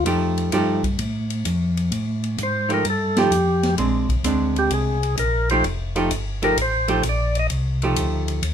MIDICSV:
0, 0, Header, 1, 5, 480
1, 0, Start_track
1, 0, Tempo, 465116
1, 66, Time_signature, 4, 2, 24, 8
1, 8811, End_track
2, 0, Start_track
2, 0, Title_t, "Tonewheel organ"
2, 0, Program_c, 0, 16
2, 2508, Note_on_c, 0, 72, 79
2, 2805, Note_off_c, 0, 72, 0
2, 2825, Note_on_c, 0, 70, 85
2, 2958, Note_off_c, 0, 70, 0
2, 2993, Note_on_c, 0, 69, 69
2, 3287, Note_off_c, 0, 69, 0
2, 3287, Note_on_c, 0, 67, 85
2, 3872, Note_off_c, 0, 67, 0
2, 4734, Note_on_c, 0, 67, 87
2, 4872, Note_off_c, 0, 67, 0
2, 4887, Note_on_c, 0, 68, 68
2, 5324, Note_off_c, 0, 68, 0
2, 5360, Note_on_c, 0, 70, 78
2, 5670, Note_off_c, 0, 70, 0
2, 5685, Note_on_c, 0, 72, 100
2, 5827, Note_off_c, 0, 72, 0
2, 6649, Note_on_c, 0, 70, 98
2, 6790, Note_off_c, 0, 70, 0
2, 6828, Note_on_c, 0, 72, 79
2, 7255, Note_off_c, 0, 72, 0
2, 7317, Note_on_c, 0, 74, 83
2, 7609, Note_off_c, 0, 74, 0
2, 7629, Note_on_c, 0, 75, 111
2, 7710, Note_off_c, 0, 75, 0
2, 8811, End_track
3, 0, Start_track
3, 0, Title_t, "Hollow-body jazz guitar"
3, 0, Program_c, 1, 26
3, 59, Note_on_c, 1, 53, 62
3, 65, Note_on_c, 1, 57, 57
3, 71, Note_on_c, 1, 63, 58
3, 75, Note_on_c, 1, 67, 72
3, 527, Note_off_c, 1, 53, 0
3, 530, Note_off_c, 1, 57, 0
3, 533, Note_off_c, 1, 63, 0
3, 535, Note_off_c, 1, 67, 0
3, 546, Note_on_c, 1, 53, 65
3, 546, Note_on_c, 1, 57, 65
3, 550, Note_on_c, 1, 63, 67
3, 554, Note_on_c, 1, 67, 65
3, 840, Note_off_c, 1, 53, 0
3, 840, Note_off_c, 1, 57, 0
3, 843, Note_off_c, 1, 63, 0
3, 845, Note_off_c, 1, 67, 0
3, 2773, Note_on_c, 1, 53, 52
3, 2779, Note_on_c, 1, 63, 54
3, 2784, Note_on_c, 1, 57, 55
3, 2793, Note_on_c, 1, 67, 54
3, 2921, Note_off_c, 1, 53, 0
3, 2924, Note_off_c, 1, 63, 0
3, 2926, Note_off_c, 1, 57, 0
3, 2931, Note_off_c, 1, 67, 0
3, 3275, Note_on_c, 1, 53, 58
3, 3278, Note_on_c, 1, 57, 60
3, 3280, Note_on_c, 1, 63, 63
3, 3287, Note_on_c, 1, 67, 69
3, 3412, Note_off_c, 1, 53, 0
3, 3413, Note_off_c, 1, 57, 0
3, 3414, Note_off_c, 1, 63, 0
3, 3418, Note_off_c, 1, 67, 0
3, 3901, Note_on_c, 1, 56, 49
3, 3910, Note_on_c, 1, 60, 49
3, 3910, Note_on_c, 1, 62, 56
3, 4198, Note_off_c, 1, 56, 0
3, 4202, Note_off_c, 1, 60, 0
3, 4202, Note_off_c, 1, 62, 0
3, 4380, Note_on_c, 1, 56, 53
3, 4382, Note_on_c, 1, 60, 59
3, 4395, Note_on_c, 1, 62, 63
3, 5125, Note_off_c, 1, 56, 0
3, 5126, Note_off_c, 1, 60, 0
3, 5132, Note_off_c, 1, 62, 0
3, 5684, Note_on_c, 1, 53, 66
3, 5688, Note_on_c, 1, 57, 64
3, 5693, Note_on_c, 1, 63, 65
3, 5701, Note_on_c, 1, 67, 66
3, 5816, Note_off_c, 1, 53, 0
3, 5818, Note_off_c, 1, 57, 0
3, 5820, Note_off_c, 1, 63, 0
3, 5824, Note_off_c, 1, 67, 0
3, 6147, Note_on_c, 1, 53, 70
3, 6152, Note_on_c, 1, 57, 75
3, 6152, Note_on_c, 1, 63, 77
3, 6158, Note_on_c, 1, 67, 77
3, 6288, Note_off_c, 1, 53, 0
3, 6290, Note_off_c, 1, 57, 0
3, 6290, Note_off_c, 1, 63, 0
3, 6293, Note_off_c, 1, 67, 0
3, 6629, Note_on_c, 1, 57, 59
3, 6633, Note_on_c, 1, 53, 58
3, 6635, Note_on_c, 1, 63, 58
3, 6642, Note_on_c, 1, 67, 71
3, 6768, Note_off_c, 1, 57, 0
3, 6770, Note_off_c, 1, 53, 0
3, 6771, Note_off_c, 1, 63, 0
3, 6775, Note_off_c, 1, 67, 0
3, 7100, Note_on_c, 1, 53, 64
3, 7103, Note_on_c, 1, 57, 63
3, 7107, Note_on_c, 1, 63, 63
3, 7114, Note_on_c, 1, 67, 75
3, 7244, Note_off_c, 1, 53, 0
3, 7245, Note_off_c, 1, 57, 0
3, 7247, Note_off_c, 1, 63, 0
3, 7251, Note_off_c, 1, 67, 0
3, 8083, Note_on_c, 1, 57, 53
3, 8084, Note_on_c, 1, 53, 58
3, 8086, Note_on_c, 1, 63, 63
3, 8091, Note_on_c, 1, 67, 61
3, 8680, Note_off_c, 1, 53, 0
3, 8680, Note_off_c, 1, 57, 0
3, 8681, Note_off_c, 1, 63, 0
3, 8684, Note_off_c, 1, 67, 0
3, 8811, End_track
4, 0, Start_track
4, 0, Title_t, "Tonewheel organ"
4, 0, Program_c, 2, 16
4, 54, Note_on_c, 2, 41, 84
4, 525, Note_off_c, 2, 41, 0
4, 544, Note_on_c, 2, 43, 77
4, 1011, Note_off_c, 2, 43, 0
4, 1022, Note_on_c, 2, 45, 68
4, 1490, Note_off_c, 2, 45, 0
4, 1499, Note_on_c, 2, 41, 83
4, 1968, Note_off_c, 2, 41, 0
4, 1975, Note_on_c, 2, 45, 78
4, 2446, Note_off_c, 2, 45, 0
4, 2463, Note_on_c, 2, 44, 76
4, 2930, Note_off_c, 2, 44, 0
4, 2942, Note_on_c, 2, 43, 71
4, 3410, Note_off_c, 2, 43, 0
4, 3420, Note_on_c, 2, 41, 74
4, 3888, Note_off_c, 2, 41, 0
4, 3897, Note_on_c, 2, 34, 80
4, 4206, Note_off_c, 2, 34, 0
4, 4222, Note_on_c, 2, 34, 36
4, 4301, Note_off_c, 2, 34, 0
4, 4366, Note_on_c, 2, 38, 77
4, 4841, Note_off_c, 2, 38, 0
4, 4853, Note_on_c, 2, 36, 70
4, 5325, Note_off_c, 2, 36, 0
4, 5339, Note_on_c, 2, 34, 81
4, 5808, Note_off_c, 2, 34, 0
4, 5822, Note_on_c, 2, 29, 76
4, 6290, Note_off_c, 2, 29, 0
4, 6304, Note_on_c, 2, 31, 83
4, 6770, Note_off_c, 2, 31, 0
4, 6778, Note_on_c, 2, 33, 71
4, 7247, Note_off_c, 2, 33, 0
4, 7256, Note_on_c, 2, 34, 87
4, 7726, Note_off_c, 2, 34, 0
4, 7741, Note_on_c, 2, 36, 84
4, 8209, Note_off_c, 2, 36, 0
4, 8212, Note_on_c, 2, 38, 78
4, 8684, Note_off_c, 2, 38, 0
4, 8695, Note_on_c, 2, 39, 79
4, 8811, Note_off_c, 2, 39, 0
4, 8811, End_track
5, 0, Start_track
5, 0, Title_t, "Drums"
5, 60, Note_on_c, 9, 51, 61
5, 163, Note_off_c, 9, 51, 0
5, 388, Note_on_c, 9, 51, 43
5, 491, Note_off_c, 9, 51, 0
5, 538, Note_on_c, 9, 44, 44
5, 538, Note_on_c, 9, 51, 63
5, 641, Note_off_c, 9, 44, 0
5, 641, Note_off_c, 9, 51, 0
5, 864, Note_on_c, 9, 36, 45
5, 868, Note_on_c, 9, 51, 42
5, 967, Note_off_c, 9, 36, 0
5, 971, Note_off_c, 9, 51, 0
5, 1018, Note_on_c, 9, 51, 60
5, 1122, Note_off_c, 9, 51, 0
5, 1344, Note_on_c, 9, 51, 44
5, 1447, Note_off_c, 9, 51, 0
5, 1498, Note_on_c, 9, 44, 52
5, 1498, Note_on_c, 9, 51, 58
5, 1601, Note_off_c, 9, 44, 0
5, 1601, Note_off_c, 9, 51, 0
5, 1830, Note_on_c, 9, 51, 42
5, 1933, Note_off_c, 9, 51, 0
5, 1979, Note_on_c, 9, 51, 57
5, 2082, Note_off_c, 9, 51, 0
5, 2307, Note_on_c, 9, 51, 39
5, 2411, Note_off_c, 9, 51, 0
5, 2460, Note_on_c, 9, 44, 56
5, 2460, Note_on_c, 9, 51, 55
5, 2563, Note_off_c, 9, 44, 0
5, 2563, Note_off_c, 9, 51, 0
5, 2786, Note_on_c, 9, 51, 39
5, 2889, Note_off_c, 9, 51, 0
5, 2939, Note_on_c, 9, 51, 58
5, 3042, Note_off_c, 9, 51, 0
5, 3265, Note_on_c, 9, 38, 41
5, 3267, Note_on_c, 9, 51, 46
5, 3369, Note_off_c, 9, 38, 0
5, 3371, Note_off_c, 9, 51, 0
5, 3424, Note_on_c, 9, 44, 57
5, 3424, Note_on_c, 9, 51, 56
5, 3527, Note_off_c, 9, 44, 0
5, 3527, Note_off_c, 9, 51, 0
5, 3748, Note_on_c, 9, 38, 34
5, 3750, Note_on_c, 9, 51, 41
5, 3851, Note_off_c, 9, 38, 0
5, 3853, Note_off_c, 9, 51, 0
5, 3899, Note_on_c, 9, 51, 58
5, 4003, Note_off_c, 9, 51, 0
5, 4222, Note_on_c, 9, 36, 48
5, 4227, Note_on_c, 9, 51, 41
5, 4325, Note_off_c, 9, 36, 0
5, 4330, Note_off_c, 9, 51, 0
5, 4379, Note_on_c, 9, 44, 52
5, 4379, Note_on_c, 9, 51, 61
5, 4482, Note_off_c, 9, 44, 0
5, 4482, Note_off_c, 9, 51, 0
5, 4708, Note_on_c, 9, 51, 41
5, 4811, Note_off_c, 9, 51, 0
5, 4856, Note_on_c, 9, 51, 60
5, 4960, Note_off_c, 9, 51, 0
5, 5192, Note_on_c, 9, 51, 44
5, 5295, Note_off_c, 9, 51, 0
5, 5341, Note_on_c, 9, 44, 55
5, 5341, Note_on_c, 9, 51, 61
5, 5444, Note_off_c, 9, 44, 0
5, 5444, Note_off_c, 9, 51, 0
5, 5671, Note_on_c, 9, 51, 41
5, 5774, Note_off_c, 9, 51, 0
5, 5822, Note_on_c, 9, 51, 55
5, 5925, Note_off_c, 9, 51, 0
5, 6148, Note_on_c, 9, 51, 42
5, 6251, Note_off_c, 9, 51, 0
5, 6303, Note_on_c, 9, 44, 57
5, 6303, Note_on_c, 9, 51, 66
5, 6406, Note_off_c, 9, 44, 0
5, 6406, Note_off_c, 9, 51, 0
5, 6631, Note_on_c, 9, 51, 43
5, 6734, Note_off_c, 9, 51, 0
5, 6786, Note_on_c, 9, 51, 66
5, 6889, Note_off_c, 9, 51, 0
5, 7103, Note_on_c, 9, 51, 47
5, 7207, Note_off_c, 9, 51, 0
5, 7258, Note_on_c, 9, 44, 46
5, 7258, Note_on_c, 9, 51, 63
5, 7361, Note_off_c, 9, 44, 0
5, 7361, Note_off_c, 9, 51, 0
5, 7587, Note_on_c, 9, 51, 45
5, 7690, Note_off_c, 9, 51, 0
5, 7738, Note_on_c, 9, 51, 61
5, 7841, Note_off_c, 9, 51, 0
5, 8069, Note_on_c, 9, 51, 41
5, 8172, Note_off_c, 9, 51, 0
5, 8218, Note_on_c, 9, 44, 53
5, 8218, Note_on_c, 9, 51, 72
5, 8321, Note_off_c, 9, 44, 0
5, 8321, Note_off_c, 9, 51, 0
5, 8545, Note_on_c, 9, 51, 46
5, 8648, Note_off_c, 9, 51, 0
5, 8696, Note_on_c, 9, 51, 63
5, 8799, Note_off_c, 9, 51, 0
5, 8811, End_track
0, 0, End_of_file